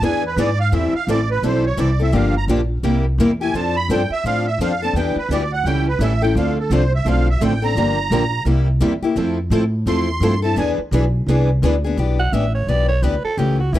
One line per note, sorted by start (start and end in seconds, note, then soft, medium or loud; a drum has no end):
0.01 0.35 E2 medium
0.01 0.22 E3 medium
0.01 0.23 B3 medium
0.01 0.23 D4 medium
0.01 0.23 G#4 medium
0.01 0.23 B4 medium
0.01 0.24 G#5 medium
0.26 0.38 B4 medium
0.36 0.71 G#2 medium
0.36 0.48 E3 medium
0.36 0.48 B3 loud
0.36 0.49 D4 medium
0.36 0.49 G#4 medium
0.36 0.49 B4 loud
0.36 0.59 D5 medium
0.60 0.72 F5 loud
0.72 0.92 E2 medium
0.72 0.93 E3 medium
0.72 0.93 G3 medium
0.72 0.93 C4 medium
0.72 0.93 E4 medium
0.72 0.93 A4 medium
0.72 0.94 E5 medium
0.93 1.08 F5 loud
0.93 muted upright bass stroke soft
1.07 1.41 A1 medium
1.07 1.19 E3 medium
1.07 1.19 G3 medium
1.07 1.19 C4 medium
1.07 1.19 E4 medium
1.07 1.19 A4 medium
1.07 1.29 D5 medium
1.31 1.43 B4 medium
1.42 1.77 B1 medium
1.42 1.63 E3 medium
1.42 1.64 G3 medium
1.42 1.64 C4 medium
1.42 1.64 E4 medium
1.42 1.64 A4 medium
1.42 1.65 C5 medium
1.66 1.78 C#5 medium
1.77 2.12 C2 medium
1.77 1.88 E3 medium
1.77 1.89 G3 medium
1.77 1.89 C4 medium
1.77 1.89 E4 loud
1.77 1.89 A4 medium
1.77 1.99 D5 medium
2.00 2.13 C4 medium
2.00 2.13 E4 medium
2.00 2.13 A4 medium
2.00 2.14 E5 medium
2.12 2.47 G1 medium
2.12 2.33 D3 medium
2.12 2.33 F3 medium
2.12 2.34 A#3 medium
2.12 2.34 D4 medium
2.12 2.34 G4 medium
2.12 2.35 F5 medium
2.37 2.45 A#5 loud
2.48 2.82 A#1 medium
2.48 2.59 D3 medium
2.48 2.60 F3 medium
2.48 2.60 A#3 medium
2.48 2.60 D4 loud
2.48 2.60 G4 medium
2.83 3.17 C2 medium
2.83 3.04 C3 medium
2.83 3.04 G3 medium
2.83 3.04 A#3 medium
2.83 3.04 E4 medium
2.83 3.05 G4 medium
3.18 3.53 E2 loud
3.18 3.30 C3 medium
3.18 3.30 G3 medium
3.18 3.30 A#3 medium
3.18 3.31 E4 medium
3.18 3.31 G4 loud
3.41 3.54 A#3 soft
3.41 3.54 E4 medium
3.41 3.54 G4 medium
3.41 3.54 G#5 loud
3.53 3.88 F2 medium
3.53 3.75 F3 medium
3.53 3.75 C4 medium
3.53 3.75 D4 medium
3.53 3.75 A4 medium
3.53 3.76 A5 medium
3.77 3.90 B5 loud
3.89 4.09 G2 medium
3.89 4.00 F3 medium
3.89 4.01 C4 medium
3.89 4.01 D4 medium
3.89 4.01 A4 loud
3.89 4.11 G5 medium
4.10 4.25 E5 loud
4.10 muted upright bass stroke soft
4.24 4.58 A2 medium
4.24 4.46 F3 medium
4.24 4.46 C4 medium
4.24 4.46 D4 medium
4.24 4.46 A4 medium
4.24 4.46 F5 loud
4.47 4.60 E5 medium
4.58 4.93 F2 medium
4.58 4.71 F3 medium
4.58 4.72 C4 medium
4.58 4.72 D4 medium
4.58 4.72 A4 loud
4.58 4.81 F5 medium
4.82 4.96 C4 medium
4.82 4.96 D4 medium
4.82 4.95 A4 medium
4.82 4.95 A5 loud
4.93 5.14 E2 medium
4.93 5.16 E3 medium
4.93 5.16 G3 medium
4.93 5.16 B3 medium
4.93 5.17 D4 medium
4.93 5.16 E4 medium
4.93 5.17 G4 medium
4.93 5.16 B4 medium
4.93 5.16 G5 medium
5.15 5.30 B4 medium
5.15 muted upright bass stroke soft
5.29 5.63 D2 medium
5.29 5.42 E3 medium
5.29 5.42 G3 medium
5.29 5.42 B3 medium
5.29 5.42 D4 medium
5.29 5.41 E4 medium
5.29 5.42 B4 loud
5.29 5.52 D5 medium
5.33 5.43 G4 medium
5.53 5.66 F#5 medium
5.64 5.98 C#2 medium
5.64 5.86 E3 medium
5.64 5.87 G3 medium
5.64 5.87 C#4 medium
5.64 5.87 E4 medium
5.64 5.87 A4 medium
5.64 5.86 G5 loud
5.88 6.01 B4 medium
5.99 6.34 A1 loud
5.99 6.12 E3 medium
5.99 6.12 G3 medium
5.99 6.12 C#4 medium
5.99 6.12 E4 medium
5.99 6.12 A4 medium
5.99 6.22 E5 medium
6.22 6.36 C#4 medium
6.22 6.36 E4 medium
6.22 6.35 A4 medium
6.22 6.35 G5 loud
6.35 6.69 D2 medium
6.35 6.57 D3 medium
6.35 6.57 F3 medium
6.35 6.57 A3 medium
6.35 6.57 C4 medium
6.35 6.57 D4 medium
6.35 6.57 F4 medium
6.35 6.57 A4 medium
6.35 6.57 F5 medium
6.59 6.72 A4 medium
6.70 7.04 C2 medium
6.70 6.82 D3 medium
6.70 6.83 F3 medium
6.70 6.82 A3 medium
6.70 6.82 C4 medium
6.70 6.83 D4 medium
6.70 6.82 F4 medium
6.70 6.83 A4 medium
6.70 6.93 C5 medium
6.95 7.07 E5 medium
7.05 7.40 B1 medium
7.05 7.27 D3 medium
7.05 7.27 F3 medium
7.05 7.26 A3 medium
7.05 7.27 C4 medium
7.05 7.28 D4 medium
7.05 7.26 F4 medium
7.05 7.28 A4 medium
7.09 7.28 F5 medium
7.30 7.42 E5 medium
7.40 7.75 A1 medium
7.40 7.52 D3 medium
7.40 7.53 F3 medium
7.40 7.52 A3 medium
7.40 7.52 C4 medium
7.40 7.53 D4 loud
7.40 7.52 F4 medium
7.40 7.53 A4 medium
7.40 7.63 G5 medium
7.62 7.77 C4 medium
7.62 7.76 D4 medium
7.62 7.76 A4 medium
7.62 8.43 A#5 loud
7.75 8.10 G1 medium
7.75 7.97 D3 medium
7.75 7.97 F3 medium
7.75 7.97 A#3 medium
7.75 7.98 D4 medium
7.75 7.98 G4 medium
8.10 8.44 A#1 medium
8.10 8.22 D3 medium
8.10 8.22 F3 medium
8.10 8.23 A#3 medium
8.10 8.23 D4 medium
8.10 8.23 G4 loud
8.45 8.80 C2 medium
8.45 8.67 C3 medium
8.45 8.67 G3 medium
8.45 8.67 A#3 medium
8.45 8.68 E4 medium
8.45 8.67 G4 medium
8.80 9.01 E2 medium
8.80 8.92 C3 medium
8.80 8.92 G3 medium
8.80 8.92 A#3 medium
8.80 8.92 E4 medium
8.80 8.93 G4 loud
9.02 9.16 A#3 medium
9.02 9.16 E4 medium
9.02 9.16 G4 medium
9.02 muted upright bass stroke soft
9.16 9.50 F2 medium
9.16 9.37 F3 medium
9.16 9.37 A3 medium
9.16 9.37 C4 medium
9.16 9.37 E4 medium
9.16 9.38 A4 medium
9.50 9.85 A2 loud
9.50 9.62 F3 medium
9.50 9.63 A3 medium
9.50 9.63 C4 medium
9.50 9.63 E4 loud
9.50 9.63 A4 loud
9.86 10.20 E2 medium
9.86 10.07 F3 medium
9.86 10.08 A3 medium
9.86 10.07 C4 medium
9.86 10.08 E4 medium
9.86 10.08 A4 medium
9.86 10.40 C6 loud
10.20 10.55 G2 loud
10.20 10.33 F3 medium
10.20 10.33 A3 medium
10.20 10.33 C4 medium
10.20 10.33 E4 medium
10.20 10.33 A4 medium
10.42 10.56 C4 medium
10.42 10.57 E4 medium
10.42 10.56 A4 medium
10.42 10.57 A5 loud
10.56 10.76 E2 medium
10.56 10.77 E3 medium
10.56 10.78 B3 medium
10.56 10.78 D4 medium
10.56 10.78 G#4 medium
10.56 10.79 B4 medium
10.56 10.71 G#5 medium
10.78 muted upright bass stroke soft
10.91 11.26 B1 medium
10.91 11.03 E3 medium
10.91 11.04 B3 medium
10.91 11.03 D4 medium
10.91 11.04 G#4 medium
10.91 11.04 B4 loud
11.26 11.61 C2 medium
11.26 11.49 E3 medium
11.26 11.49 B3 medium
11.26 11.49 D4 medium
11.26 11.49 G#4 medium
11.26 11.49 B4 medium
11.62 11.96 D2 loud
11.62 11.74 E3 medium
11.62 11.74 B3 medium
11.62 11.74 D4 loud
11.62 11.74 G#4 loud
11.62 11.75 B4 medium
11.84 11.97 B3 medium
11.84 11.98 D4 medium
11.84 11.97 G#4 medium
11.97 12.31 B1 medium
11.97 12.18 E3 medium
11.97 12.18 B3 medium
11.97 12.19 D4 medium
11.97 12.19 G4 medium
12.20 12.35 F#5 loud
12.32 12.66 A1 medium
12.32 12.44 E3 medium
12.32 12.44 B3 medium
12.32 12.44 D4 medium
12.32 12.44 G4 medium
12.32 12.54 E5 medium
12.55 12.70 C#5 medium
12.67 13.02 B1 medium
12.67 12.89 E3 medium
12.67 12.89 B3 medium
12.67 12.89 D4 medium
12.67 12.89 G4 medium
12.67 12.88 D5 medium
12.89 13.04 C#5 medium
13.02 13.23 D2 medium
13.02 13.14 E3 medium
13.02 13.14 B3 medium
13.02 13.14 D4 medium
13.02 13.14 G4 medium
13.02 13.24 B4 medium
13.24 13.39 A4 loud
13.24 muted upright bass stroke soft
13.37 13.72 C#2 medium
13.37 13.59 C#3 medium
13.37 13.59 E3 medium
13.37 13.59 A3 medium
13.37 13.59 C#4 medium
13.37 13.59 G4 medium
13.59 13.74 F#4 medium
13.73 13.79 D2 medium
13.73 13.79 C#3 medium
13.73 13.79 E3 medium
13.73 13.79 A3 medium
13.73 13.79 C#4 medium
13.73 13.79 E4 medium
13.73 13.79 G4 loud